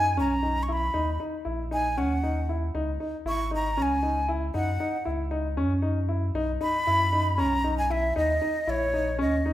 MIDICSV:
0, 0, Header, 1, 4, 480
1, 0, Start_track
1, 0, Tempo, 515907
1, 876, Time_signature, 7, 3, 24, 8
1, 8867, End_track
2, 0, Start_track
2, 0, Title_t, "Flute"
2, 0, Program_c, 0, 73
2, 0, Note_on_c, 0, 80, 103
2, 164, Note_off_c, 0, 80, 0
2, 186, Note_on_c, 0, 82, 82
2, 584, Note_on_c, 0, 85, 55
2, 598, Note_off_c, 0, 82, 0
2, 675, Note_on_c, 0, 83, 81
2, 689, Note_off_c, 0, 85, 0
2, 1135, Note_off_c, 0, 83, 0
2, 1609, Note_on_c, 0, 80, 88
2, 1841, Note_on_c, 0, 78, 76
2, 1855, Note_off_c, 0, 80, 0
2, 2378, Note_off_c, 0, 78, 0
2, 3052, Note_on_c, 0, 85, 93
2, 3266, Note_off_c, 0, 85, 0
2, 3305, Note_on_c, 0, 82, 81
2, 3555, Note_on_c, 0, 80, 71
2, 3569, Note_off_c, 0, 82, 0
2, 4014, Note_off_c, 0, 80, 0
2, 4235, Note_on_c, 0, 78, 93
2, 4736, Note_off_c, 0, 78, 0
2, 6159, Note_on_c, 0, 83, 112
2, 6876, Note_on_c, 0, 82, 100
2, 6890, Note_off_c, 0, 83, 0
2, 7234, Note_off_c, 0, 82, 0
2, 7239, Note_on_c, 0, 80, 83
2, 7361, Note_on_c, 0, 76, 85
2, 7375, Note_off_c, 0, 80, 0
2, 7599, Note_off_c, 0, 76, 0
2, 7606, Note_on_c, 0, 75, 93
2, 8089, Note_on_c, 0, 73, 90
2, 8103, Note_off_c, 0, 75, 0
2, 8565, Note_off_c, 0, 73, 0
2, 8570, Note_on_c, 0, 75, 74
2, 8867, Note_off_c, 0, 75, 0
2, 8867, End_track
3, 0, Start_track
3, 0, Title_t, "Grand piano"
3, 0, Program_c, 1, 0
3, 161, Note_on_c, 1, 61, 79
3, 290, Note_off_c, 1, 61, 0
3, 396, Note_on_c, 1, 63, 54
3, 527, Note_off_c, 1, 63, 0
3, 636, Note_on_c, 1, 64, 66
3, 767, Note_off_c, 1, 64, 0
3, 872, Note_on_c, 1, 63, 76
3, 1004, Note_off_c, 1, 63, 0
3, 1115, Note_on_c, 1, 63, 66
3, 1246, Note_off_c, 1, 63, 0
3, 1347, Note_on_c, 1, 64, 66
3, 1480, Note_off_c, 1, 64, 0
3, 1593, Note_on_c, 1, 63, 72
3, 1724, Note_off_c, 1, 63, 0
3, 1836, Note_on_c, 1, 61, 80
3, 1966, Note_off_c, 1, 61, 0
3, 2078, Note_on_c, 1, 63, 64
3, 2207, Note_off_c, 1, 63, 0
3, 2317, Note_on_c, 1, 64, 64
3, 2447, Note_off_c, 1, 64, 0
3, 2555, Note_on_c, 1, 63, 74
3, 2686, Note_off_c, 1, 63, 0
3, 2793, Note_on_c, 1, 63, 62
3, 2924, Note_off_c, 1, 63, 0
3, 3031, Note_on_c, 1, 64, 72
3, 3163, Note_off_c, 1, 64, 0
3, 3267, Note_on_c, 1, 63, 66
3, 3400, Note_off_c, 1, 63, 0
3, 3511, Note_on_c, 1, 61, 74
3, 3642, Note_off_c, 1, 61, 0
3, 3746, Note_on_c, 1, 63, 60
3, 3879, Note_off_c, 1, 63, 0
3, 3986, Note_on_c, 1, 64, 71
3, 4119, Note_off_c, 1, 64, 0
3, 4224, Note_on_c, 1, 63, 73
3, 4357, Note_off_c, 1, 63, 0
3, 4466, Note_on_c, 1, 63, 71
3, 4599, Note_off_c, 1, 63, 0
3, 4701, Note_on_c, 1, 64, 68
3, 4835, Note_off_c, 1, 64, 0
3, 4940, Note_on_c, 1, 63, 71
3, 5074, Note_off_c, 1, 63, 0
3, 5184, Note_on_c, 1, 61, 75
3, 5317, Note_off_c, 1, 61, 0
3, 5418, Note_on_c, 1, 63, 66
3, 5553, Note_off_c, 1, 63, 0
3, 5663, Note_on_c, 1, 64, 63
3, 5796, Note_off_c, 1, 64, 0
3, 5908, Note_on_c, 1, 63, 85
3, 6040, Note_off_c, 1, 63, 0
3, 6147, Note_on_c, 1, 63, 71
3, 6279, Note_off_c, 1, 63, 0
3, 6390, Note_on_c, 1, 64, 71
3, 6522, Note_off_c, 1, 64, 0
3, 6631, Note_on_c, 1, 63, 65
3, 6763, Note_off_c, 1, 63, 0
3, 6864, Note_on_c, 1, 61, 81
3, 6998, Note_off_c, 1, 61, 0
3, 7110, Note_on_c, 1, 63, 65
3, 7242, Note_off_c, 1, 63, 0
3, 7351, Note_on_c, 1, 64, 73
3, 7483, Note_off_c, 1, 64, 0
3, 7591, Note_on_c, 1, 63, 81
3, 7724, Note_off_c, 1, 63, 0
3, 7829, Note_on_c, 1, 63, 71
3, 7962, Note_off_c, 1, 63, 0
3, 8071, Note_on_c, 1, 64, 74
3, 8204, Note_off_c, 1, 64, 0
3, 8313, Note_on_c, 1, 63, 69
3, 8445, Note_off_c, 1, 63, 0
3, 8546, Note_on_c, 1, 61, 80
3, 8681, Note_off_c, 1, 61, 0
3, 8798, Note_on_c, 1, 63, 73
3, 8867, Note_off_c, 1, 63, 0
3, 8867, End_track
4, 0, Start_track
4, 0, Title_t, "Sub bass"
4, 0, Program_c, 2, 38
4, 0, Note_on_c, 2, 42, 76
4, 154, Note_on_c, 2, 35, 96
4, 168, Note_off_c, 2, 42, 0
4, 838, Note_off_c, 2, 35, 0
4, 880, Note_on_c, 2, 39, 81
4, 1097, Note_off_c, 2, 39, 0
4, 1358, Note_on_c, 2, 34, 89
4, 1841, Note_on_c, 2, 39, 96
4, 1855, Note_off_c, 2, 34, 0
4, 2520, Note_off_c, 2, 39, 0
4, 2557, Note_on_c, 2, 37, 85
4, 2775, Note_off_c, 2, 37, 0
4, 3027, Note_on_c, 2, 32, 90
4, 3510, Note_on_c, 2, 37, 81
4, 3524, Note_off_c, 2, 32, 0
4, 4194, Note_off_c, 2, 37, 0
4, 4230, Note_on_c, 2, 42, 85
4, 4450, Note_off_c, 2, 42, 0
4, 4715, Note_on_c, 2, 37, 79
4, 5183, Note_on_c, 2, 42, 100
4, 5197, Note_off_c, 2, 37, 0
4, 5871, Note_off_c, 2, 42, 0
4, 5902, Note_on_c, 2, 35, 83
4, 6126, Note_off_c, 2, 35, 0
4, 6396, Note_on_c, 2, 42, 95
4, 6878, Note_on_c, 2, 35, 89
4, 6892, Note_off_c, 2, 42, 0
4, 7560, Note_off_c, 2, 35, 0
4, 7599, Note_on_c, 2, 39, 86
4, 7817, Note_off_c, 2, 39, 0
4, 8072, Note_on_c, 2, 34, 88
4, 8560, Note_on_c, 2, 39, 84
4, 8574, Note_off_c, 2, 34, 0
4, 8867, Note_off_c, 2, 39, 0
4, 8867, End_track
0, 0, End_of_file